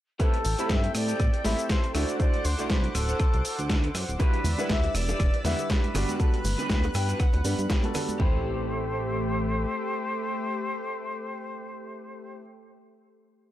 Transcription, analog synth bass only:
0, 0, Header, 1, 2, 480
1, 0, Start_track
1, 0, Tempo, 500000
1, 189, Time_signature, 4, 2, 24, 8
1, 12976, End_track
2, 0, Start_track
2, 0, Title_t, "Analog synth bass"
2, 0, Program_c, 0, 38
2, 430, Note_on_c, 0, 33, 101
2, 526, Note_off_c, 0, 33, 0
2, 668, Note_on_c, 0, 43, 94
2, 849, Note_off_c, 0, 43, 0
2, 910, Note_on_c, 0, 45, 86
2, 1090, Note_off_c, 0, 45, 0
2, 1150, Note_on_c, 0, 45, 85
2, 1246, Note_off_c, 0, 45, 0
2, 1388, Note_on_c, 0, 33, 83
2, 1485, Note_off_c, 0, 33, 0
2, 1868, Note_on_c, 0, 38, 98
2, 1965, Note_off_c, 0, 38, 0
2, 2349, Note_on_c, 0, 38, 104
2, 2446, Note_off_c, 0, 38, 0
2, 2484, Note_on_c, 0, 36, 44
2, 2568, Note_off_c, 0, 36, 0
2, 2589, Note_on_c, 0, 36, 99
2, 2770, Note_off_c, 0, 36, 0
2, 2832, Note_on_c, 0, 26, 86
2, 3012, Note_off_c, 0, 26, 0
2, 3205, Note_on_c, 0, 36, 94
2, 3281, Note_off_c, 0, 36, 0
2, 3443, Note_on_c, 0, 38, 95
2, 3742, Note_off_c, 0, 38, 0
2, 3788, Note_on_c, 0, 42, 98
2, 3885, Note_off_c, 0, 42, 0
2, 3921, Note_on_c, 0, 26, 89
2, 3999, Note_off_c, 0, 26, 0
2, 4267, Note_on_c, 0, 40, 105
2, 4364, Note_off_c, 0, 40, 0
2, 4509, Note_on_c, 0, 38, 97
2, 4690, Note_off_c, 0, 38, 0
2, 4746, Note_on_c, 0, 28, 92
2, 4928, Note_off_c, 0, 28, 0
2, 4989, Note_on_c, 0, 28, 86
2, 5086, Note_off_c, 0, 28, 0
2, 5228, Note_on_c, 0, 40, 83
2, 5325, Note_off_c, 0, 40, 0
2, 5709, Note_on_c, 0, 31, 104
2, 5805, Note_off_c, 0, 31, 0
2, 6186, Note_on_c, 0, 31, 102
2, 6284, Note_off_c, 0, 31, 0
2, 6321, Note_on_c, 0, 38, 45
2, 6407, Note_off_c, 0, 38, 0
2, 6429, Note_on_c, 0, 38, 98
2, 6610, Note_off_c, 0, 38, 0
2, 6669, Note_on_c, 0, 43, 94
2, 6850, Note_off_c, 0, 43, 0
2, 7042, Note_on_c, 0, 38, 92
2, 7119, Note_off_c, 0, 38, 0
2, 7148, Note_on_c, 0, 43, 85
2, 7245, Note_off_c, 0, 43, 0
2, 7282, Note_on_c, 0, 43, 83
2, 7359, Note_off_c, 0, 43, 0
2, 7870, Note_on_c, 0, 33, 90
2, 9271, Note_off_c, 0, 33, 0
2, 12976, End_track
0, 0, End_of_file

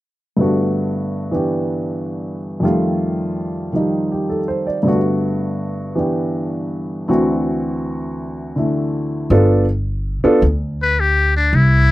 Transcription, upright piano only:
0, 0, Header, 1, 2, 480
1, 0, Start_track
1, 0, Key_signature, 1, "major"
1, 0, Tempo, 557103
1, 333, Time_signature, 4, 2, 24, 8
1, 10266, End_track
2, 0, Start_track
2, 0, Title_t, "Upright piano"
2, 0, Program_c, 0, 0
2, 316, Note_on_c, 0, 43, 45
2, 325, Note_on_c, 0, 50, 39
2, 336, Note_on_c, 0, 57, 42
2, 345, Note_on_c, 0, 59, 41
2, 354, Note_on_c, 0, 66, 47
2, 1129, Note_off_c, 0, 59, 0
2, 1133, Note_on_c, 0, 52, 38
2, 1142, Note_on_c, 0, 59, 34
2, 1152, Note_on_c, 0, 62, 35
2, 1163, Note_on_c, 0, 67, 40
2, 2241, Note_on_c, 0, 41, 46
2, 2249, Note_off_c, 0, 43, 0
2, 2252, Note_on_c, 0, 51, 46
2, 2253, Note_off_c, 0, 50, 0
2, 2256, Note_off_c, 0, 52, 0
2, 2258, Note_off_c, 0, 57, 0
2, 2260, Note_off_c, 0, 59, 0
2, 2262, Note_on_c, 0, 55, 43
2, 2265, Note_off_c, 0, 62, 0
2, 2268, Note_off_c, 0, 66, 0
2, 2270, Note_on_c, 0, 57, 45
2, 2271, Note_off_c, 0, 67, 0
2, 2283, Note_on_c, 0, 65, 53
2, 3199, Note_off_c, 0, 51, 0
2, 3212, Note_on_c, 0, 51, 38
2, 3217, Note_off_c, 0, 55, 0
2, 3223, Note_on_c, 0, 53, 35
2, 3230, Note_on_c, 0, 55, 36
2, 3239, Note_on_c, 0, 63, 46
2, 3546, Note_on_c, 0, 67, 40
2, 3699, Note_on_c, 0, 69, 41
2, 3791, Note_off_c, 0, 67, 0
2, 3860, Note_on_c, 0, 72, 48
2, 3997, Note_off_c, 0, 69, 0
2, 4020, Note_on_c, 0, 74, 47
2, 4108, Note_off_c, 0, 72, 0
2, 4161, Note_on_c, 0, 43, 45
2, 4165, Note_off_c, 0, 57, 0
2, 4172, Note_off_c, 0, 41, 0
2, 4172, Note_on_c, 0, 50, 43
2, 4177, Note_off_c, 0, 51, 0
2, 4178, Note_on_c, 0, 57, 41
2, 4182, Note_off_c, 0, 53, 0
2, 4186, Note_off_c, 0, 55, 0
2, 4190, Note_off_c, 0, 63, 0
2, 4193, Note_off_c, 0, 65, 0
2, 4195, Note_on_c, 0, 59, 41
2, 4205, Note_on_c, 0, 66, 51
2, 4269, Note_off_c, 0, 74, 0
2, 5125, Note_off_c, 0, 59, 0
2, 5130, Note_on_c, 0, 52, 43
2, 5138, Note_on_c, 0, 59, 37
2, 5149, Note_on_c, 0, 62, 34
2, 5158, Note_on_c, 0, 67, 44
2, 6092, Note_off_c, 0, 43, 0
2, 6094, Note_off_c, 0, 50, 0
2, 6096, Note_off_c, 0, 52, 0
2, 6100, Note_off_c, 0, 59, 0
2, 6101, Note_off_c, 0, 57, 0
2, 6101, Note_off_c, 0, 66, 0
2, 6101, Note_on_c, 0, 38, 55
2, 6105, Note_off_c, 0, 62, 0
2, 6107, Note_on_c, 0, 50, 49
2, 6108, Note_on_c, 0, 52, 51
2, 6110, Note_off_c, 0, 67, 0
2, 6112, Note_on_c, 0, 60, 48
2, 6114, Note_on_c, 0, 66, 60
2, 7362, Note_off_c, 0, 50, 0
2, 7375, Note_on_c, 0, 50, 40
2, 7391, Note_on_c, 0, 57, 35
2, 7402, Note_on_c, 0, 64, 41
2, 8018, Note_off_c, 0, 50, 0
2, 8020, Note_off_c, 0, 38, 0
2, 8022, Note_on_c, 0, 62, 61
2, 8023, Note_on_c, 0, 59, 63
2, 8024, Note_off_c, 0, 52, 0
2, 8025, Note_off_c, 0, 57, 0
2, 8026, Note_off_c, 0, 60, 0
2, 8026, Note_on_c, 0, 69, 70
2, 8027, Note_off_c, 0, 66, 0
2, 8028, Note_on_c, 0, 65, 59
2, 8031, Note_off_c, 0, 64, 0
2, 8309, Note_off_c, 0, 62, 0
2, 8310, Note_off_c, 0, 59, 0
2, 8311, Note_off_c, 0, 69, 0
2, 8312, Note_off_c, 0, 65, 0
2, 8822, Note_on_c, 0, 59, 73
2, 8822, Note_on_c, 0, 62, 67
2, 8826, Note_on_c, 0, 65, 63
2, 8828, Note_on_c, 0, 69, 78
2, 8964, Note_off_c, 0, 59, 0
2, 8965, Note_off_c, 0, 62, 0
2, 8966, Note_off_c, 0, 65, 0
2, 8967, Note_off_c, 0, 69, 0
2, 10266, End_track
0, 0, End_of_file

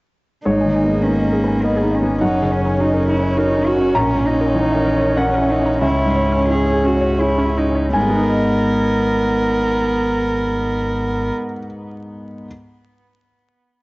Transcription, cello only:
0, 0, Header, 1, 2, 480
1, 0, Start_track
1, 0, Key_signature, 5, "minor"
1, 0, Tempo, 584795
1, 378, Time_signature, 3, 2, 24, 8
1, 3256, Tempo, 619835
1, 4696, Tempo, 689655
1, 5656, Tempo, 750000
1, 9893, End_track
2, 0, Start_track
2, 0, Title_t, "Cello"
2, 0, Program_c, 0, 42
2, 370, Note_on_c, 0, 63, 51
2, 842, Note_on_c, 0, 61, 44
2, 854, Note_off_c, 0, 63, 0
2, 1335, Note_on_c, 0, 59, 46
2, 1347, Note_off_c, 0, 61, 0
2, 1593, Note_on_c, 0, 61, 43
2, 1605, Note_off_c, 0, 59, 0
2, 1816, Note_off_c, 0, 61, 0
2, 1821, Note_on_c, 0, 63, 50
2, 2065, Note_on_c, 0, 61, 51
2, 2077, Note_off_c, 0, 63, 0
2, 2299, Note_on_c, 0, 63, 51
2, 2311, Note_off_c, 0, 61, 0
2, 2534, Note_off_c, 0, 63, 0
2, 2538, Note_on_c, 0, 64, 52
2, 2765, Note_on_c, 0, 63, 56
2, 2777, Note_off_c, 0, 64, 0
2, 3010, Note_on_c, 0, 66, 60
2, 3023, Note_off_c, 0, 63, 0
2, 3251, Note_on_c, 0, 61, 64
2, 3263, Note_off_c, 0, 66, 0
2, 3480, Note_on_c, 0, 63, 65
2, 3492, Note_off_c, 0, 61, 0
2, 4195, Note_on_c, 0, 61, 59
2, 4207, Note_off_c, 0, 63, 0
2, 4444, Note_on_c, 0, 63, 56
2, 4455, Note_off_c, 0, 61, 0
2, 4687, Note_off_c, 0, 63, 0
2, 4691, Note_on_c, 0, 64, 55
2, 5106, Note_off_c, 0, 64, 0
2, 5157, Note_on_c, 0, 68, 62
2, 5414, Note_on_c, 0, 66, 57
2, 5425, Note_off_c, 0, 68, 0
2, 5656, Note_on_c, 0, 64, 55
2, 5666, Note_off_c, 0, 66, 0
2, 5895, Note_on_c, 0, 63, 50
2, 5904, Note_off_c, 0, 64, 0
2, 6132, Note_off_c, 0, 63, 0
2, 6141, Note_on_c, 0, 59, 61
2, 8288, Note_off_c, 0, 59, 0
2, 9893, End_track
0, 0, End_of_file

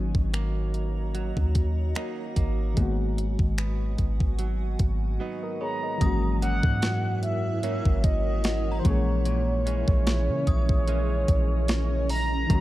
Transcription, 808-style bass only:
0, 0, Header, 1, 2, 480
1, 0, Start_track
1, 0, Tempo, 810811
1, 1639, Time_signature, 4, 2, 24, 8
1, 7462, End_track
2, 0, Start_track
2, 0, Title_t, "808-style bass"
2, 0, Program_c, 0, 38
2, 0, Note_on_c, 0, 32, 105
2, 75, Note_off_c, 0, 32, 0
2, 89, Note_on_c, 0, 32, 100
2, 785, Note_off_c, 0, 32, 0
2, 811, Note_on_c, 0, 39, 97
2, 1146, Note_off_c, 0, 39, 0
2, 1402, Note_on_c, 0, 32, 98
2, 1631, Note_off_c, 0, 32, 0
2, 1640, Note_on_c, 0, 32, 103
2, 1995, Note_off_c, 0, 32, 0
2, 2009, Note_on_c, 0, 32, 97
2, 2345, Note_off_c, 0, 32, 0
2, 2361, Note_on_c, 0, 32, 107
2, 2821, Note_off_c, 0, 32, 0
2, 2841, Note_on_c, 0, 32, 96
2, 3070, Note_off_c, 0, 32, 0
2, 3560, Note_on_c, 0, 32, 112
2, 3914, Note_off_c, 0, 32, 0
2, 3928, Note_on_c, 0, 44, 106
2, 4625, Note_off_c, 0, 44, 0
2, 4651, Note_on_c, 0, 32, 102
2, 5217, Note_off_c, 0, 32, 0
2, 5241, Note_on_c, 0, 34, 109
2, 5826, Note_off_c, 0, 34, 0
2, 5849, Note_on_c, 0, 34, 110
2, 6092, Note_on_c, 0, 49, 105
2, 6101, Note_off_c, 0, 34, 0
2, 6196, Note_off_c, 0, 49, 0
2, 6201, Note_on_c, 0, 34, 110
2, 6661, Note_off_c, 0, 34, 0
2, 6682, Note_on_c, 0, 34, 103
2, 7377, Note_off_c, 0, 34, 0
2, 7401, Note_on_c, 0, 32, 113
2, 7462, Note_off_c, 0, 32, 0
2, 7462, End_track
0, 0, End_of_file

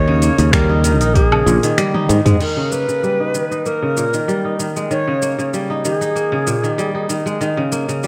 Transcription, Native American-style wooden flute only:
0, 0, Header, 1, 2, 480
1, 0, Start_track
1, 0, Tempo, 625000
1, 1850, Time_signature, 4, 2, 24, 8
1, 6199, End_track
2, 0, Start_track
2, 0, Title_t, "Native American-style wooden flute"
2, 0, Program_c, 0, 77
2, 0, Note_on_c, 0, 73, 98
2, 400, Note_on_c, 0, 70, 91
2, 411, Note_off_c, 0, 73, 0
2, 877, Note_on_c, 0, 68, 83
2, 888, Note_off_c, 0, 70, 0
2, 1363, Note_off_c, 0, 68, 0
2, 1849, Note_on_c, 0, 70, 85
2, 2083, Note_on_c, 0, 71, 95
2, 2094, Note_off_c, 0, 70, 0
2, 2799, Note_off_c, 0, 71, 0
2, 2804, Note_on_c, 0, 70, 80
2, 3496, Note_off_c, 0, 70, 0
2, 3770, Note_on_c, 0, 73, 92
2, 4219, Note_off_c, 0, 73, 0
2, 4485, Note_on_c, 0, 68, 100
2, 5417, Note_off_c, 0, 68, 0
2, 6199, End_track
0, 0, End_of_file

